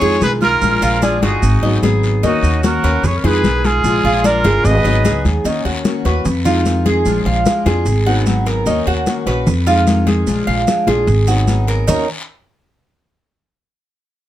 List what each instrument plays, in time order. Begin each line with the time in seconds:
Already playing: flute G#4, trumpet C#5
0.01 upright bass F2, steel-string acoustic guitar D#3 G#3 D#4 F4, cuban tres G#4, high conga, maracas
0.21 upright bass B1, steel-string acoustic guitar D#3 G#3 D#4 F4, flute G#4, trumpet B4, high conga, short guiro, maracas
0.41 flute F4, trumpet A#4, high conga, short guiro, maracas
0.61 upright bass A#1, steel-string acoustic guitar F3 G#3 D4 F4, high conga, long guiro, maracas
0.82 upright bass A#1, cuban tres F4, high conga, maracas
1.01 steel-string acoustic guitar F3 G#3 D4 F4, cuban tres D4, flute F4, trumpet G#4, high conga, short guiro, maracas
1.22 upright bass G1, steel-string acoustic guitar G#3 D4 F4, flute D#4, trumpet F#4, cuban tres G#4, high conga, short guiro, maracas
1.43 upright bass G#1, muted steel-string acoustic guitar stroke, high conga, long guiro, maracas
1.63 steel-string acoustic guitar F#3 B3 D#4 G#4, cuban tres D#5, high conga
1.82 upright bass G#1, steel-string acoustic guitar F#3 B3 D#4 G#4, cuban tres G#4, high conga, short guiro, maracas
2.03 short guiro, maracas
2.23 upright bass D#2, steel-string acoustic guitar D#3 A#3 C#4 F#4, cuban tres D#4, flute D#4, trumpet F#4, high conga, long guiro, maracas
2.43 upright bass D#2, high conga, maracas
2.63 steel-string acoustic guitar D#3 A#3 C#4 F#4, cuban tres F#4, flute F#4, trumpet A#4, high conga, short guiro, maracas
2.83 upright bass D#2, steel-string acoustic guitar A#3 C#4 F#4, cuban tres B4, high conga, short guiro, maracas
3.03 upright bass F2, flute G#4, trumpet C#5, muted steel-string acoustic guitar stroke, high conga, low conga, long guiro, maracas
3.17 flute A#4, trumpet C#5
3.24 upright bass F2, steel-string acoustic guitar D#3 G#3 D#4 F4, cuban tres G#4, flute G#4, trumpet B4, high conga, low conga
3.44 upright bass B1, steel-string acoustic guitar D#3 G#3 D#4 F4, high conga, short guiro, maracas
3.65 flute F4, trumpet G#4, high conga, short guiro, maracas
3.84 upright bass A#1, steel-string acoustic guitar F3 G#3 D4 F4, high conga, long guiro, maracas
4.04 upright bass A#1, cuban tres F4, high conga
4.24 steel-string acoustic guitar F3 G#3 D4 F4, cuban tres D4, flute F4, trumpet A#4, high conga, short guiro, maracas
4.44 upright bass G1, steel-string acoustic guitar G#3 D4 F4, cuban tres G#4, high conga, short guiro, maracas
4.65 upright bass G#1, flute B4, trumpet D#5, muted steel-string acoustic guitar stroke, high conga, long guiro, maracas
4.85 upright bass G#1, steel-string acoustic guitar F#3 B3 D#4 G#4, cuban tres D#5, high conga, maracas
5.05 upright bass C#2, steel-string acoustic guitar F#3 B3 D#4 G#4, cuban tres G#4, high conga, short guiro, maracas
5.25 upright bass D#2, high conga, short guiro, maracas
5.45 upright bass D#2, steel-string acoustic guitar D#3 A#3 C#4 F#4, cuban tres D#4, high conga, long guiro, maracas
5.65 upright bass D#2, cuban tres F#4, high conga
5.85 steel-string acoustic guitar D#3 A#3 C#4 F#4, high conga, short guiro, maracas
6.05 upright bass D#2, steel-string acoustic guitar A#3 C#4 F#4, cuban tres B4, high conga, short guiro, maracas
6.25 upright bass F2, muted steel-string acoustic guitar stroke, high conga, low conga, long guiro, maracas
6.45 steel-string acoustic guitar D#3 G#3 D#4 F4, cuban tres F4, high conga, low conga, maracas
6.65 steel-string acoustic guitar D#3 G#3 D#4 F4, high conga, short guiro, maracas
6.86 cuban tres G#4, high conga, short guiro, maracas
7.05 upright bass A#1, steel-string acoustic guitar F3 G#3 D4 F4, high conga, long guiro, maracas
7.25 upright bass A#1, cuban tres F5, high conga
7.46 steel-string acoustic guitar F3 G#3 D4 F4, high conga, short guiro, maracas
7.66 upright bass F2, steel-string acoustic guitar G#3 D4 F4, cuban tres G#4, high conga, short guiro, maracas
7.86 upright bass G#1, muted steel-string acoustic guitar stroke, high conga, long guiro, maracas
8.06 steel-string acoustic guitar F#3 B3 D#4 G#4, cuban tres F#4, high conga
8.26 steel-string acoustic guitar F#3 B3 D#4 G#4, high conga, short guiro, maracas
8.46 cuban tres A#4, short guiro, maracas
8.66 upright bass D#2, steel-string acoustic guitar D#3 A#3 C#4 F#4, cuban tres D#4, high conga, long guiro, maracas
8.87 upright bass D#2, cuban tres F#4, high conga
9.06 steel-string acoustic guitar D#3 A#3 C#4 F#4, high conga, short guiro, maracas
9.26 upright bass A#1, steel-string acoustic guitar A#3 C#4 F#4, cuban tres B4, high conga, short guiro, maracas
9.47 upright bass F2, muted steel-string acoustic guitar stroke, high conga, low conga, long guiro, maracas
9.67 steel-string acoustic guitar D#3 G#3 D#4 F4, cuban tres F4, high conga, maracas
9.87 steel-string acoustic guitar D#3 G#3 D#4 F4, high conga, short guiro, maracas
10.07 cuban tres G#4, high conga, short guiro, maracas
10.27 upright bass A#1, steel-string acoustic guitar F3 G#3 D4 F4, high conga, long guiro, maracas
10.47 upright bass A#1, cuban tres F5, high conga
10.67 steel-string acoustic guitar F3 G#3 D4 F4, high conga, short guiro, maracas
10.87 upright bass A#1, steel-string acoustic guitar G#3 D4 F4, cuban tres G#4, high conga, short guiro, maracas
11.07 upright bass G#1, muted steel-string acoustic guitar stroke, high conga, long guiro, maracas
11.27 steel-string acoustic guitar F#3 B3 D#4 G#4, cuban tres F#4, high conga, maracas
11.48 steel-string acoustic guitar F#3 B3 D#4 G#4, high conga, short guiro, maracas
11.68 cuban tres A#4, short guiro, maracas
11.87 upright bass D#2, steel-string acoustic guitar D#3 A#3 C#4 F#4, cuban tres D#4 A#4 C#5, low conga, long guiro, maracas